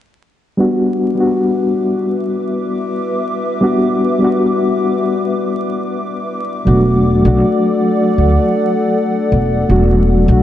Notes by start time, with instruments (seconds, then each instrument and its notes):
0.57 reed electric piano G3 B3 D4 F#4, analog synth pad B4 E5 D6
1.15 reed electric piano G3 B3 D4
1.20 reed electric piano F#4
3.61 reed electric piano G3 B3 D4 F#4
4.19 reed electric piano G3 B3 D4
4.24 reed electric piano F#4
6.65 upright bass E1, reed electric piano F#3 A3 D4 F#4, analog synth pad A4 D5 F#5
7.22 upright bass B1, reed electric piano F#3 A3 D4
7.28 reed electric piano F#4
8.18 upright bass D2
9.32 upright bass E1
9.69 upright bass E1, reed electric piano F#3 A3 D4 F#4
10.26 upright bass B1, reed electric piano F#3 A3 D4
10.32 reed electric piano F#4